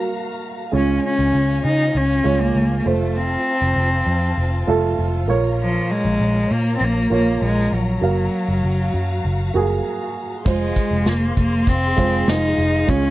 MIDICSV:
0, 0, Header, 1, 6, 480
1, 0, Start_track
1, 0, Tempo, 607903
1, 578, Time_signature, 4, 2, 24, 8
1, 10347, End_track
2, 0, Start_track
2, 0, Title_t, "String section"
2, 0, Program_c, 0, 48
2, 0, Note_on_c, 0, 66, 74
2, 0, Note_on_c, 0, 77, 62
2, 0, Note_on_c, 0, 82, 83
2, 549, Note_off_c, 0, 77, 0
2, 559, Note_off_c, 0, 66, 0
2, 560, Note_off_c, 0, 82, 0
2, 575, Note_on_c, 0, 80, 73
2, 576, Note_on_c, 0, 73, 62
2, 577, Note_on_c, 0, 65, 68
2, 2239, Note_off_c, 0, 73, 0
2, 2239, Note_off_c, 0, 80, 0
2, 2255, Note_on_c, 0, 81, 72
2, 2256, Note_on_c, 0, 72, 61
2, 4156, Note_off_c, 0, 81, 0
2, 4157, Note_off_c, 0, 72, 0
2, 4167, Note_on_c, 0, 73, 64
2, 4171, Note_on_c, 0, 82, 71
2, 6305, Note_off_c, 0, 65, 0
2, 6310, Note_off_c, 0, 73, 0
2, 6339, Note_on_c, 0, 66, 72
2, 6339, Note_on_c, 0, 77, 64
2, 8223, Note_off_c, 0, 82, 0
2, 8239, Note_off_c, 0, 66, 0
2, 8239, Note_off_c, 0, 77, 0
2, 8259, Note_on_c, 0, 68, 72
2, 8262, Note_on_c, 0, 84, 74
2, 8264, Note_on_c, 0, 77, 69
2, 10161, Note_off_c, 0, 84, 0
2, 10170, Note_on_c, 0, 85, 84
2, 10347, Note_off_c, 0, 68, 0
2, 10347, Note_off_c, 0, 77, 0
2, 10347, Note_off_c, 0, 85, 0
2, 10347, End_track
3, 0, Start_track
3, 0, Title_t, "Upright piano"
3, 0, Program_c, 1, 0
3, 0, Control_c, 1, 64, 127
3, 0, Note_on_c, 1, 58, 68
3, 0, Note_on_c, 1, 66, 60
3, 0, Note_on_c, 1, 77, 76
3, 498, Note_off_c, 1, 58, 0
3, 502, Note_off_c, 1, 66, 0
3, 504, Note_off_c, 1, 77, 0
3, 566, Note_on_c, 1, 56, 58
3, 573, Note_on_c, 1, 49, 50
3, 576, Note_on_c, 1, 65, 55
3, 583, Note_on_c, 1, 73, 68
3, 588, Control_c, 1, 64, 0
3, 725, Control_c, 1, 64, 127
3, 1264, Note_off_c, 1, 49, 0
3, 1432, Note_off_c, 1, 56, 0
3, 1438, Note_off_c, 1, 65, 0
3, 1441, Note_off_c, 1, 73, 0
3, 1769, Note_on_c, 1, 56, 56
3, 1775, Note_on_c, 1, 65, 52
3, 1781, Note_on_c, 1, 73, 68
3, 2244, Note_off_c, 1, 65, 0
3, 2248, Note_on_c, 1, 57, 55
3, 2253, Note_off_c, 1, 56, 0
3, 2256, Note_on_c, 1, 65, 53
3, 2259, Note_off_c, 1, 73, 0
3, 2266, Note_on_c, 1, 72, 65
3, 2267, Control_c, 1, 64, 0
3, 2419, Control_c, 1, 64, 127
3, 3113, Note_off_c, 1, 57, 0
3, 3117, Note_off_c, 1, 65, 0
3, 3122, Note_off_c, 1, 72, 0
3, 3690, Note_on_c, 1, 57, 77
3, 3696, Note_on_c, 1, 65, 67
3, 3708, Note_on_c, 1, 69, 87
3, 4163, Note_off_c, 1, 65, 0
3, 4168, Note_on_c, 1, 58, 78
3, 4173, Note_off_c, 1, 57, 0
3, 4175, Note_on_c, 1, 65, 61
3, 4176, Note_on_c, 1, 46, 57
3, 4182, Note_off_c, 1, 69, 0
3, 4182, Note_on_c, 1, 73, 83
3, 4186, Control_c, 1, 64, 0
3, 4335, Control_c, 1, 64, 127
3, 4865, Note_off_c, 1, 46, 0
3, 5033, Note_off_c, 1, 58, 0
3, 5037, Note_off_c, 1, 65, 0
3, 5040, Note_off_c, 1, 73, 0
3, 5607, Note_on_c, 1, 58, 68
3, 5617, Note_on_c, 1, 65, 59
3, 5623, Note_on_c, 1, 73, 68
3, 6258, Note_off_c, 1, 58, 0
3, 6263, Note_off_c, 1, 65, 0
3, 6266, Note_off_c, 1, 73, 0
3, 6326, Note_on_c, 1, 58, 62
3, 6333, Note_on_c, 1, 66, 55
3, 6345, Note_on_c, 1, 77, 60
3, 6348, Control_c, 1, 64, 0
3, 6501, Control_c, 1, 64, 127
3, 7193, Note_off_c, 1, 58, 0
3, 7196, Note_off_c, 1, 66, 0
3, 7202, Note_off_c, 1, 77, 0
3, 7532, Note_on_c, 1, 58, 68
3, 7539, Note_on_c, 1, 66, 69
3, 7549, Note_on_c, 1, 68, 84
3, 8181, Note_off_c, 1, 58, 0
3, 8184, Note_off_c, 1, 66, 0
3, 8189, Note_off_c, 1, 68, 0
3, 8252, Note_on_c, 1, 56, 58
3, 8261, Note_on_c, 1, 65, 54
3, 8266, Note_on_c, 1, 72, 71
3, 8267, Control_c, 1, 64, 0
3, 8393, Control_c, 1, 64, 127
3, 9116, Note_off_c, 1, 56, 0
3, 9120, Note_off_c, 1, 65, 0
3, 9123, Note_off_c, 1, 72, 0
3, 9448, Note_on_c, 1, 56, 62
3, 9458, Note_on_c, 1, 65, 60
3, 9466, Note_on_c, 1, 72, 66
3, 10099, Note_off_c, 1, 56, 0
3, 10104, Note_off_c, 1, 65, 0
3, 10108, Note_off_c, 1, 72, 0
3, 10164, Note_on_c, 1, 56, 65
3, 10172, Note_on_c, 1, 65, 59
3, 10174, Note_on_c, 1, 49, 57
3, 10181, Note_on_c, 1, 73, 68
3, 10190, Control_c, 1, 64, 0
3, 10347, Note_off_c, 1, 49, 0
3, 10347, Note_off_c, 1, 56, 0
3, 10347, Note_off_c, 1, 65, 0
3, 10347, Note_off_c, 1, 73, 0
3, 10347, End_track
4, 0, Start_track
4, 0, Title_t, "Cello"
4, 0, Program_c, 2, 42
4, 601, Note_on_c, 2, 61, 80
4, 813, Note_off_c, 2, 61, 0
4, 833, Note_on_c, 2, 61, 86
4, 1274, Note_off_c, 2, 61, 0
4, 1308, Note_on_c, 2, 63, 91
4, 1556, Note_on_c, 2, 61, 90
4, 1568, Note_off_c, 2, 63, 0
4, 1903, Note_on_c, 2, 58, 83
4, 1914, Note_off_c, 2, 61, 0
4, 2199, Note_off_c, 2, 58, 0
4, 2204, Note_on_c, 2, 58, 55
4, 2265, Note_on_c, 2, 57, 69
4, 2277, Note_off_c, 2, 58, 0
4, 2498, Note_on_c, 2, 60, 90
4, 2510, Note_off_c, 2, 57, 0
4, 3937, Note_off_c, 2, 60, 0
4, 4428, Note_on_c, 2, 53, 85
4, 4667, Note_on_c, 2, 56, 95
4, 4679, Note_off_c, 2, 53, 0
4, 5151, Note_on_c, 2, 58, 94
4, 5162, Note_off_c, 2, 56, 0
4, 5328, Note_off_c, 2, 58, 0
4, 5342, Note_on_c, 2, 60, 71
4, 5404, Note_on_c, 2, 58, 87
4, 5416, Note_off_c, 2, 60, 0
4, 5630, Note_off_c, 2, 58, 0
4, 5640, Note_on_c, 2, 58, 85
4, 5852, Note_off_c, 2, 58, 0
4, 5879, Note_on_c, 2, 56, 88
4, 6115, Note_on_c, 2, 54, 77
4, 6127, Note_off_c, 2, 56, 0
4, 7786, Note_off_c, 2, 54, 0
4, 8262, Note_on_c, 2, 56, 83
4, 8745, Note_on_c, 2, 58, 79
4, 8757, Note_off_c, 2, 56, 0
4, 8982, Note_off_c, 2, 58, 0
4, 8987, Note_on_c, 2, 58, 88
4, 9228, Note_on_c, 2, 60, 95
4, 9240, Note_off_c, 2, 58, 0
4, 9705, Note_on_c, 2, 63, 95
4, 9717, Note_off_c, 2, 60, 0
4, 10182, Note_on_c, 2, 61, 97
4, 10194, Note_off_c, 2, 63, 0
4, 10347, Note_off_c, 2, 61, 0
4, 10347, End_track
5, 0, Start_track
5, 0, Title_t, "Picked electric bass"
5, 0, Program_c, 3, 34
5, 577, Note_on_c, 3, 37, 74
5, 774, Note_off_c, 3, 37, 0
5, 939, Note_on_c, 3, 37, 75
5, 1037, Note_off_c, 3, 37, 0
5, 1059, Note_on_c, 3, 37, 80
5, 1255, Note_off_c, 3, 37, 0
5, 1300, Note_on_c, 3, 49, 81
5, 1495, Note_off_c, 3, 49, 0
5, 1540, Note_on_c, 3, 37, 88
5, 1736, Note_off_c, 3, 37, 0
5, 1779, Note_on_c, 3, 37, 88
5, 1975, Note_off_c, 3, 37, 0
5, 2013, Note_on_c, 3, 37, 81
5, 2211, Note_off_c, 3, 37, 0
5, 2258, Note_on_c, 3, 29, 70
5, 2651, Note_off_c, 3, 29, 0
5, 2857, Note_on_c, 3, 29, 77
5, 2955, Note_off_c, 3, 29, 0
5, 2971, Note_on_c, 3, 29, 91
5, 3170, Note_off_c, 3, 29, 0
5, 3210, Note_on_c, 3, 41, 81
5, 3410, Note_off_c, 3, 41, 0
5, 3455, Note_on_c, 3, 29, 77
5, 3652, Note_off_c, 3, 29, 0
5, 3697, Note_on_c, 3, 29, 88
5, 3894, Note_off_c, 3, 29, 0
5, 3937, Note_on_c, 3, 29, 80
5, 4177, Note_off_c, 3, 29, 0
5, 4177, Note_on_c, 3, 34, 73
5, 4570, Note_off_c, 3, 34, 0
5, 4777, Note_on_c, 3, 34, 85
5, 4875, Note_off_c, 3, 34, 0
5, 4895, Note_on_c, 3, 34, 84
5, 5092, Note_off_c, 3, 34, 0
5, 5139, Note_on_c, 3, 46, 85
5, 5335, Note_off_c, 3, 46, 0
5, 5377, Note_on_c, 3, 34, 86
5, 5573, Note_off_c, 3, 34, 0
5, 5614, Note_on_c, 3, 34, 81
5, 5812, Note_off_c, 3, 34, 0
5, 5857, Note_on_c, 3, 34, 83
5, 6054, Note_off_c, 3, 34, 0
5, 6097, Note_on_c, 3, 34, 81
5, 6294, Note_off_c, 3, 34, 0
5, 6333, Note_on_c, 3, 30, 76
5, 6532, Note_off_c, 3, 30, 0
5, 6699, Note_on_c, 3, 30, 66
5, 6796, Note_off_c, 3, 30, 0
5, 6820, Note_on_c, 3, 30, 84
5, 7016, Note_off_c, 3, 30, 0
5, 7059, Note_on_c, 3, 42, 78
5, 7255, Note_off_c, 3, 42, 0
5, 7303, Note_on_c, 3, 30, 81
5, 7497, Note_off_c, 3, 30, 0
5, 7540, Note_on_c, 3, 30, 81
5, 7736, Note_off_c, 3, 30, 0
5, 8259, Note_on_c, 3, 29, 85
5, 8455, Note_off_c, 3, 29, 0
5, 8614, Note_on_c, 3, 29, 80
5, 8714, Note_off_c, 3, 29, 0
5, 8735, Note_on_c, 3, 29, 89
5, 8933, Note_off_c, 3, 29, 0
5, 8979, Note_on_c, 3, 29, 84
5, 9175, Note_off_c, 3, 29, 0
5, 9218, Note_on_c, 3, 29, 94
5, 9415, Note_off_c, 3, 29, 0
5, 9459, Note_on_c, 3, 29, 78
5, 9655, Note_off_c, 3, 29, 0
5, 9694, Note_on_c, 3, 29, 78
5, 9893, Note_off_c, 3, 29, 0
5, 9935, Note_on_c, 3, 29, 78
5, 10133, Note_off_c, 3, 29, 0
5, 10174, Note_on_c, 3, 37, 92
5, 10347, Note_off_c, 3, 37, 0
5, 10347, End_track
6, 0, Start_track
6, 0, Title_t, "Drums"
6, 8257, Note_on_c, 9, 49, 73
6, 8259, Note_on_c, 9, 36, 99
6, 8336, Note_off_c, 9, 49, 0
6, 8338, Note_off_c, 9, 36, 0
6, 8496, Note_on_c, 9, 42, 71
6, 8498, Note_on_c, 9, 36, 82
6, 8575, Note_off_c, 9, 42, 0
6, 8577, Note_off_c, 9, 36, 0
6, 8731, Note_on_c, 9, 42, 91
6, 8735, Note_on_c, 9, 38, 96
6, 8810, Note_off_c, 9, 42, 0
6, 8814, Note_off_c, 9, 38, 0
6, 8975, Note_on_c, 9, 42, 65
6, 8978, Note_on_c, 9, 36, 73
6, 9054, Note_off_c, 9, 42, 0
6, 9057, Note_off_c, 9, 36, 0
6, 9215, Note_on_c, 9, 36, 80
6, 9218, Note_on_c, 9, 42, 83
6, 9294, Note_off_c, 9, 36, 0
6, 9297, Note_off_c, 9, 42, 0
6, 9454, Note_on_c, 9, 42, 70
6, 9458, Note_on_c, 9, 36, 65
6, 9533, Note_off_c, 9, 42, 0
6, 9537, Note_off_c, 9, 36, 0
6, 9696, Note_on_c, 9, 38, 94
6, 9699, Note_on_c, 9, 42, 94
6, 9775, Note_off_c, 9, 38, 0
6, 9778, Note_off_c, 9, 42, 0
6, 9935, Note_on_c, 9, 42, 55
6, 10014, Note_off_c, 9, 42, 0
6, 10175, Note_on_c, 9, 36, 102
6, 10175, Note_on_c, 9, 42, 83
6, 10254, Note_off_c, 9, 36, 0
6, 10254, Note_off_c, 9, 42, 0
6, 10347, End_track
0, 0, End_of_file